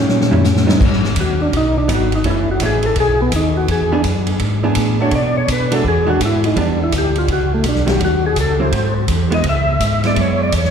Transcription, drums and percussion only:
0.09 snare soft
0.21 snare medium
0.33 floor tom medium
0.44 snare medium
0.44 hi-hat pedal medium
0.56 snare medium
0.69 snare medium
0.81 kick medium
0.81 crash medium
0.93 snare soft
1.04 snare soft
1.16 kick soft
1.16 hi-hat pedal medium
1.16 ride medium
1.52 kick soft
1.52 ride medium
1.88 kick soft
1.88 hi-hat pedal medium
1.88 ride medium
2.12 ride soft
2.24 kick soft
2.24 ride medium
2.60 kick soft
2.60 hi-hat pedal medium
2.60 ride medium
2.83 ride soft
2.96 kick soft
2.96 ride medium
3.32 kick soft
3.32 hi-hat pedal medium
3.32 ride medium
3.68 kick soft
3.68 ride medium
4.04 kick soft
4.04 hi-hat pedal medium
4.04 ride medium
4.27 ride soft
4.39 kick soft
4.39 ride medium
4.75 kick soft
4.75 hi-hat pedal medium
4.75 ride medium
5.11 kick soft
5.11 ride medium
5.48 kick soft
5.48 hi-hat pedal medium
5.48 ride medium
5.72 ride medium
5.84 kick soft
6.20 kick soft
6.20 hi-hat pedal medium
6.20 ride medium
6.44 ride medium
6.56 kick soft
6.56 ride medium
6.92 kick soft
6.92 hi-hat pedal medium
6.92 ride medium
7.16 ride soft
7.28 kick soft
7.28 ride medium
7.64 kick soft
7.64 hi-hat pedal medium
7.64 ride medium
7.75 snare soft
7.87 snare soft
7.87 ride soft
8.00 kick soft
8.00 ride medium
8.36 kick soft
8.36 hi-hat pedal medium
8.36 ride medium
8.72 kick soft
8.72 ride medium
9.08 kick soft
9.08 hi-hat pedal medium
9.08 ride medium
9.32 ride soft
9.44 kick soft
9.44 ride medium
9.80 kick soft
9.80 hi-hat pedal medium
9.80 ride medium
10.04 snare soft
10.04 ride soft
10.16 kick soft
10.16 ride medium
10.52 kick soft
10.52 hi-hat pedal medium
10.52 ride medium
10.64 snare soft

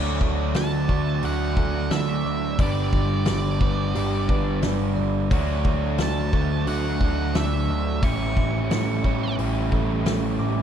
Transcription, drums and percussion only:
0.21 kick medium
0.54 snare loud
0.54 open hi-hat soft
0.89 kick medium
1.23 open hi-hat soft
1.57 kick medium
1.91 snare loud
1.91 open hi-hat soft
2.59 kick loud
2.59 open hi-hat medium
2.93 kick medium
3.25 snare medium
3.25 open hi-hat medium
3.61 kick medium
3.95 open hi-hat medium
4.29 kick medium
4.62 snare loud
4.62 open hi-hat medium
5.31 kick loud
5.31 open hi-hat medium
5.65 kick medium
5.98 snare loud
5.98 open hi-hat soft
6.33 kick medium
6.67 open hi-hat medium
7.01 kick medium
7.35 snare loud
7.35 open hi-hat medium
8.03 kick loud
8.03 open hi-hat medium
8.37 kick medium
8.71 snare loud
8.71 open hi-hat medium
9.04 kick medium
9.39 open hi-hat medium
9.72 kick medium
10.06 snare loud
10.06 open hi-hat medium

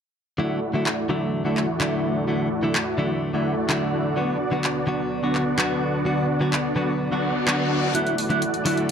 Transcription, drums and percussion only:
0.86 clap loud
1.57 clap medium
1.81 clap loud
2.75 clap loud
3.70 clap loud
4.64 clap loud
5.35 clap medium
5.59 clap loud
6.53 clap loud
7.48 clap loud
7.95 closed hi-hat medium
8.07 closed hi-hat soft
8.18 open hi-hat loud
8.30 closed hi-hat soft
8.42 closed hi-hat medium
8.54 closed hi-hat soft
8.66 open hi-hat loud
8.77 closed hi-hat soft

